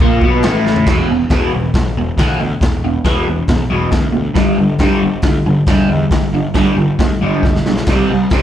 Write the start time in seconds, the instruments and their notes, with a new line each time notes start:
0.00 picked electric bass A#1, overdriven electric guitar A#2 A#3, kick, crash
0.21 picked electric bass B1, overdriven electric guitar B2 B3, kick
0.43 picked electric bass A1, overdriven electric guitar A2 A3, snare, crash
0.66 snare
0.76 floor tom
0.86 picked electric bass E1, overdriven electric guitar E2 B2 E3, kick, snare, crash
1.10 picked electric bass E1, overdriven electric guitar E2 B2
1.30 picked electric bass E2, overdriven electric guitar E2 B2 E3, kick, snare, open hi-hat
1.54 picked electric bass E1, overdriven electric guitar E2 B2
1.74 picked electric bass B1, overdriven electric guitar E2 B2, kick, snare, open hi-hat
1.95 picked electric bass E1, overdriven electric guitar E2 B2
2.17 picked electric bass D2, overdriven electric guitar E2 B2 E3, kick, snare, open hi-hat
2.39 picked electric bass D2, overdriven electric guitar E2 B2
2.61 picked electric bass E1, overdriven electric guitar E2 B2, kick, snare, open hi-hat
2.82 picked electric bass E1, overdriven electric guitar E2 B2
3.05 overdriven electric guitar E2 B2 E3, picked electric bass E2, kick, snare, open hi-hat
3.27 picked electric bass E1, overdriven electric guitar E2 B2
3.48 picked electric bass B1, overdriven electric guitar E2 B2, kick, snare, open hi-hat
3.70 picked electric bass E1, overdriven electric guitar E2 B2 E3
3.91 picked electric bass D2, overdriven electric guitar E2 B2, kick, snare, open hi-hat
4.13 picked electric bass D2, overdriven electric guitar E2 B2
4.35 picked electric bass G1, overdriven electric guitar G2 D3 G3, kick, snare, open hi-hat
4.58 picked electric bass G1, overdriven electric guitar G2 D3
4.79 picked electric bass G2, overdriven electric guitar G2 D3 G3, kick, snare, open hi-hat
5.02 picked electric bass G1, overdriven electric guitar G2 D3
5.22 picked electric bass D2, overdriven electric guitar G2 D3, kick, snare, open hi-hat
5.46 picked electric bass G1, overdriven electric guitar G2 D3
5.67 picked electric bass E1, overdriven electric guitar G2 D3 G3, kick, snare, open hi-hat
5.89 picked electric bass E2, overdriven electric guitar G2 D3
6.11 picked electric bass G1, overdriven electric guitar G2 D3, kick, snare, open hi-hat
6.31 picked electric bass G1, overdriven electric guitar G2 D3
6.54 overdriven electric guitar G2 D3 G3, picked electric bass G2, kick, snare, open hi-hat
6.76 picked electric bass G1, overdriven electric guitar G2 D3
6.99 picked electric bass D2, overdriven electric guitar G2 D3, kick, snare, open hi-hat
7.21 picked electric bass G1, overdriven electric guitar G2 D3 G3
7.43 picked electric bass E1, overdriven electric guitar G2 D3, kick, snare
7.56 snare
7.65 picked electric bass B1, overdriven electric guitar G2 D3, snare
7.77 snare
7.87 picked electric bass C2, overdriven electric guitar C3 G3, kick, snare, open hi-hat, crash
7.91 overdriven electric guitar C4
8.10 picked electric bass C2, overdriven electric guitar C3 G3
8.30 picked electric bass C3, overdriven electric guitar C3 G3 C4, kick, snare, open hi-hat